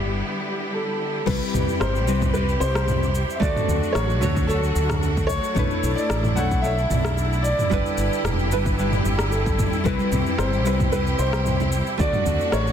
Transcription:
Already playing: G1 D3 G3 B3 D4 E4 G4 B4
0.74 A4
1.26 C2 C3 G3 C4 E4 G4 B4, kick, crash, shaker
1.42 shaker
1.54 C2, mid tom, shaker
1.69 shaker
1.80 G1 C5, cross-stick, shaker
1.95 shaker
2.07 C2 G3 C4 E4 B4, shaker
2.21 kick, mid tom, shaker
2.33 G3 C4 E4 B4, shaker
2.49 shaker
2.60 C2 C5, shaker
2.75 cross-stick, shaker
2.88 mid tom, shaker
3.03 shaker
3.15 shaker
3.30 shaker
3.35 E5
3.40 D2 F#3 A3 D4 F#4 D5, kick, shaker
3.56 mid tom, shaker
3.68 D2, shaker
3.83 shaker
3.93 A1 C#5, cross-stick, shaker
4.10 shaker
4.21 D2 A3 D4 F#4 C#5, mid tom, shaker
4.37 kick, shaker
4.47 A3 D4 F#4 A4 C#5, shaker
4.64 shaker
4.76 D2, shaker
4.90 cross-stick, mid tom, shaker
5.03 shaker
5.17 kick, shaker
5.27 C#5, kick, shaker
5.44 shaker
5.55 B1 A3 D4 E4 B4, kick, mid tom, shaker
5.71 shaker
5.83 B1, shaker
5.95 D5, shaker
6.10 A1, cross-stick, shaker
6.24 mid tom, shaker
6.36 B1 A3 D4 E4 C#5 F#5, shaker
6.51 kick, shaker
6.62 A3 D4 E4 C#5 E5, shaker
6.78 shaker
6.90 B1, mid tom, shaker
7.05 cross-stick, shaker
7.18 shaker
7.33 shaker
7.42 D5, shaker
7.59 mid tom, shaker
7.70 G1 D3 G3 D4 E4 G4 B4, kick, shaker
7.86 shaker
7.98 G1, shaker
8.13 shaker
8.24 E1, cross-stick, mid tom, shaker
8.39 shaker
8.51 G1 G3 D4 E4 B4, shaker
8.66 kick, shaker
8.79 G3 D4 E4 B4, shaker
8.92 mid tom, shaker
9.05 G1, shaker
9.19 cross-stick, shaker
9.31 A4, shaker
9.46 kick, shaker
9.59 kick, mid tom, shaker
9.73 shaker
9.84 C2 C3 G3 C4 E4 G4 B4, kick, shaker
9.99 low conga, shaker
10.12 C2, mid tom, high conga, shaker
10.26 high bongo, shaker
10.38 G1 C5, cross-stick, shaker
10.53 shaker
10.65 C2 G3 C4 E4 B4, shaker
10.80 kick, mid tom, high conga, shaker
10.92 G3 C4 E4 B4, shaker
11.07 shaker
11.19 C2 C5, high bongo, shaker
11.33 cross-stick, shaker
11.46 mid tom, shaker
11.60 high conga, low conga, shaker
11.72 shaker
11.87 shaker
11.98 D2 F#3 A3 D4 F#4 D5, kick, shaker
12.13 mid tom, low conga, shaker
12.26 D2, high conga, shaker
12.39 high bongo, shaker
12.52 A1 C#5, cross-stick, shaker
12.67 shaker

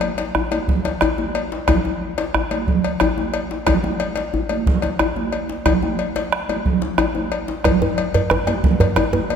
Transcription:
0.01 cowbell, high conga
0.18 cowbell, djembe slap
0.35 bombo rim, djembe slap, high conga, djembe bass
0.51 bombo rim, cowbell, djembe tone, high conga
0.68 bombo low, low conga
0.85 bombo rim, cowbell, djembe slap
1.01 bombo rim, cowbell, djembe bass
1.18 djembe tone, high conga
1.35 cowbell
1.52 djembe slap
1.68 bombo rim, bombo low, cowbell, low conga, djembe bass
1.85 djembe tone
2.01 high conga
2.18 cowbell, djembe slap
2.34 bombo rim, djembe slap, djembe bass
2.51 bombo rim, cowbell, high conga, djembe tone
2.67 bombo low, low conga
2.84 bombo rim, cowbell
3.00 bombo rim, cowbell, djembe bass
3.18 high conga, djembe tone
3.34 cowbell
3.51 djembe slap
3.67 bombo rim, bombo low, cowbell, djembe bass, low conga
3.84 high conga, djembe tone
4.00 cowbell, high conga
4.16 cowbell, djembe slap
4.34 djembe slap, high conga, djembe bass
4.49 bombo rim, cowbell, djembe tone, high conga
4.66 bombo low, low conga
4.82 bombo rim, cowbell, djembe slap
4.99 bombo rim, cowbell, djembe bass
5.16 djembe tone, high conga
5.32 cowbell
5.49 djembe slap
5.66 bombo rim, bombo low, cowbell, high conga, djembe bass, low conga
5.82 bombo rim, djembe tone, high conga
5.99 cowbell
6.16 cowbell, djembe slap
6.32 bombo rim, high conga
6.49 cowbell, djembe tone, high conga
6.65 bombo low, high conga, low conga
6.82 djembe slap, high conga
6.98 bombo rim, cowbell, high conga, djembe bass
7.15 djembe tone, high conga
7.32 cowbell
7.48 bombo rim, djembe slap, high conga
7.64 bombo rim, bombo low, cowbell, djembe tone, djembe bass, low conga
7.82 djembe tone
7.98 cowbell, high conga
8.14 cowbell, djembe slap, djembe bass
8.30 bombo rim, djembe slap, djembe tone, high conga, djembe bass
8.47 bombo rim, cowbell, djembe tone, high conga
8.63 bombo low, low conga
8.80 bombo rim, cowbell, djembe slap, djembe bass
8.96 bombo rim, cowbell, djembe tone, djembe bass
9.13 djembe tone, high conga
9.30 cowbell

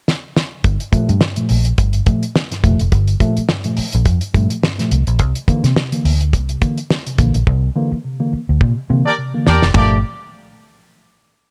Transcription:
0.08 snare
0.37 snare
0.64 G1 G2, kick, closed hi-hat
0.80 closed hi-hat
0.92 A#2 F3 A3, muted fingered electric bass stroke, kick, closed hi-hat
1.09 G2 F3 A3, closed hi-hat
1.21 G2, snare
1.36 A#2 F3 A3, closed hi-hat
1.49 A#1 F3 A3, open hi-hat
1.65 closed hi-hat
1.78 G1 F3 A3, kick, closed hi-hat
1.93 G2, closed hi-hat
2.06 A#2 F3 A3, kick, closed hi-hat
2.23 closed hi-hat
2.35 F3 A3, snare
2.51 G2, snare, closed hi-hat
2.63 F1 A#2 F3 A3, kick, closed hi-hat
2.79 F1, closed hi-hat
2.92 G1 G2, kick, closed hi-hat
3.08 closed hi-hat
3.20 A#2 F3 A3, kick, closed hi-hat
3.36 F3 A3, muted fingered electric bass stroke, closed hi-hat
3.49 G2, snare
3.64 A#2 F3 A3, closed hi-hat
3.77 F3 A3, muted fingered electric bass stroke, open hi-hat
3.92 A#1, closed hi-hat
4.05 F2 G2, kick, closed hi-hat
4.21 closed hi-hat
4.34 G2 A#2 F3 A3, kick, closed hi-hat
4.50 F3 A3, closed hi-hat
4.62 G2, snare
4.78 A#2 F3 A3, snare, closed hi-hat
4.91 C2 F3 A3, closed hi-hat
5.07 A#1, closed hi-hat
5.19 C2 C3, kick, closed hi-hat
5.35 closed hi-hat
5.48 D3 E3 A#3, muted fingered electric bass stroke, kick, closed hi-hat
5.64 C3 E3 A#3, snare, closed hi-hat
5.76 C3, snare
5.92 D3 E3 A#3, closed hi-hat
6.05 D2 E3 A#3, open hi-hat
6.21 closed hi-hat
6.33 C2 E3 A#3, kick, closed hi-hat
6.49 C3, closed hi-hat
6.61 D3 E3 A#3, kick, closed hi-hat
6.78 closed hi-hat
6.91 E3 A#3, snare
7.06 C3, closed hi-hat
7.18 A#1 D3 E3 A#3, kick, closed hi-hat
7.34 A#1, closed hi-hat
7.47 C2 C3, kick
7.76 D3 E3 A#3
7.92 E3 A#3, muted fingered electric bass stroke
8.05 C3
8.20 D3 E3 A#3
8.33 E3 A#3, muted fingered electric bass stroke
8.49 D2
8.61 A#2 C3, kick
8.90 C3 D3 E3 A#3
9.06 E3 A#3 D4 G4 A#4 D5
9.18 C3
9.34 D3 E3 A#3
9.47 E2 E3 A#3 D4 G4 A#4 D5, snare
9.62 F1, snare
9.74 G1 A#2 F3 A3 A#3 D4 G4 D5, kick, floor tom, ride bell

